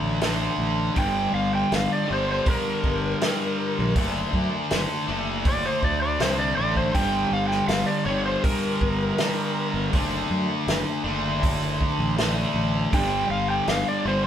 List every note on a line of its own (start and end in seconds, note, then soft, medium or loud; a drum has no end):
0.00 0.48 A1 medium
0.00 0.19 D3 medium
0.00 0.19 A3 medium
0.00 0.24 D4 medium
0.20 0.93 D3 medium
0.20 0.94 A3 medium
0.20 snare loud
0.20 open hi-hat soft
0.24 3.74 D4 medium
0.58 0.88 A1 medium
0.95 1.27 G1 medium
0.95 2.05 G2 medium
0.95 2.06 D3 medium
0.95 2.05 G3 medium
0.95 1.33 G5 loud
0.95 kick medium
0.95 open hi-hat soft
1.33 1.63 G1 medium
1.33 1.52 F5 medium
1.55 1.72 G5 medium
1.72 1.86 G1 medium
1.72 snare medium
1.72 open hi-hat soft
1.76 1.91 F5 medium
1.92 2.09 D5 medium
2.06 3.19 G2 medium
2.06 3.18 D3 medium
2.06 3.17 G3 medium
2.10 2.40 G1 medium
2.10 2.29 C5 medium
2.32 2.47 C5 medium
2.46 3.93 A#4 medium
2.46 kick loud
2.46 open hi-hat soft
2.84 3.13 G1 medium
2.84 kick medium
3.20 3.92 G2 medium
3.20 3.93 D3 medium
3.20 3.94 G3 medium
3.20 snare loud
3.20 open hi-hat medium
3.79 3.93 A#1 medium
3.95 4.25 F#1 medium
3.95 5.05 D3 medium
3.95 5.06 A3 medium
3.95 5.07 D4 medium
3.95 kick loud
3.95 open hi-hat soft
4.33 4.48 F#2 medium
4.33 kick medium
4.71 4.86 F#1 medium
4.71 snare loud
4.71 open hi-hat soft
5.07 5.68 F#1 medium
5.07 6.19 D3 medium
5.07 6.18 A3 medium
5.07 6.23 D4 medium
5.45 5.64 D5 medium
5.45 kick loud
5.45 open hi-hat soft
5.66 5.82 C5 medium
5.83 6.16 D2 medium
5.83 6.01 D5 medium
5.83 kick medium
6.02 6.19 D5 medium
6.20 6.53 C2 medium
6.20 6.92 D3 medium
6.20 6.93 A3 medium
6.20 6.38 C5 medium
6.20 snare loud
6.20 open hi-hat soft
6.24 9.74 D4 medium
6.38 6.56 D5 medium
6.57 6.91 A1 medium
6.57 6.75 D5 medium
6.76 6.94 C5 medium
6.76 kick medium
6.94 7.24 G1 loud
6.94 8.04 G2 medium
6.94 8.05 D3 medium
6.94 8.04 G3 medium
6.94 7.30 G5 loud
6.94 kick medium
6.94 open hi-hat soft
7.31 7.61 G1 medium
7.31 7.48 F5 medium
7.49 7.67 G5 medium
7.49 snare soft
7.68 7.83 G1 medium
7.68 7.86 F5 medium
7.68 snare medium
7.68 open hi-hat soft
7.86 8.05 D5 medium
8.05 8.36 G1 medium
8.05 9.17 D3 medium
8.05 9.15 G3 medium
8.05 8.24 C#5 medium
8.09 9.16 G2 medium
8.26 8.43 C5 medium
8.44 9.89 A#4 medium
8.44 kick loud
8.44 open hi-hat soft
8.81 9.11 G1 medium
8.81 kick medium
9.17 9.90 G2 medium
9.17 9.91 D3 medium
9.17 9.92 G3 medium
9.17 snare loud
9.17 open hi-hat medium
9.74 9.89 G1 medium
9.92 10.23 F#1 medium
9.92 11.03 D3 medium
9.92 11.04 A3 medium
9.92 11.04 D4 loud
9.92 kick loud
9.92 open hi-hat soft
10.30 10.45 F#2 medium
10.67 10.83 F#1 medium
10.67 snare loud
10.67 open hi-hat soft
11.04 11.80 F#1 medium
11.04 12.15 D3 medium
11.04 12.16 A3 medium
11.04 12.20 D4 medium
11.43 kick loud
11.43 open hi-hat medium
11.81 kick medium
11.99 12.44 A1 medium
12.17 12.90 D3 medium
12.17 12.91 A3 medium
12.17 14.27 D4 medium
12.17 snare loud
12.17 open hi-hat soft
12.54 12.85 A1 medium
12.92 13.23 G1 loud
12.92 14.03 G2 medium
12.92 14.03 D3 medium
12.92 14.04 G3 medium
12.92 13.30 G5 loud
12.92 kick loud
12.92 open hi-hat soft
13.30 13.60 G1 medium
13.30 13.49 F5 medium
13.50 13.68 G5 medium
13.67 13.83 G1 medium
13.67 13.87 F5 medium
13.67 snare medium
13.67 open hi-hat soft
13.88 14.06 D5 medium
14.05 14.27 G1 medium
14.05 14.27 G2 medium
14.05 14.27 D3 medium
14.05 14.27 G3 medium
14.05 14.25 C5 medium